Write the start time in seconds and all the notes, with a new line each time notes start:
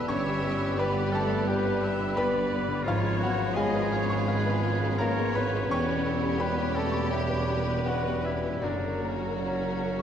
Already playing: E2 B2 G3 B3 G4 A4 B4 E5 F#5 G5 A5 B5
0.07 G1 G2 B3 C#4 B4 C#5 E5 B5 C#6
0.26 D3
0.42 B3
0.60 G4
0.77 B3 B4 D5 G5 B5
0.94 G4
1.12 A3 A4 G5 A5
1.17 A4
1.29 B5
1.47 G3 G4 B4 D5 G5
1.65 B4
1.81 G4 E5
1.99 D3
2.14 B3 B4 D5 G5 B5
2.34 D3
2.51 B3
2.68 D3
2.84 G#1 G#2 F3 B3 C#4 F4 C#5
2.88 F4 C#5 F5
3.03 G#3
3.19 F#3 B3 F#4
3.23 F#4 F#5
3.37 F4
3.54 G#3 G#4 C#5 D#5 F5 G#5
3.75 B4
3.92 C#5 F5
4.10 C#6
4.26 B4 F5
4.47 B4
4.64 F4
4.83 G#3
4.98 A#3 B3 A#4 C#5 F5 A#5
5.18 G#3
5.34 B3 B4 B5
5.54 G#3
5.69 E1 E2 G3 C#4 G4 B4 C#5 B5 C#6
5.73 C#5 G5
5.89 B2
6.05 B3 A4
6.23 G4
6.40 B3 G4 B4 C#5 G5 B5
6.57 B4
6.74 A3 A4 G5 A5
6.92 C#6
7.11 G3 G4 B4 E5 G5
7.30 B4
7.47 G4
7.67 B2
7.84 F#3 B3 F#4 F#5
7.89 F#4
8.05 B2
8.23 E3 B3 E4 E5
8.43 B2
8.61 F#1 F#2 D3 F#3 A#3 D4 F#4 A#4 C#5 D5 A#5
8.65 A#4
8.83 C#3
9.01 A#3
9.21 F#4
9.34 D5
9.40 C#3 C#4 A#4 C#5
9.61 A#4
9.79 F#5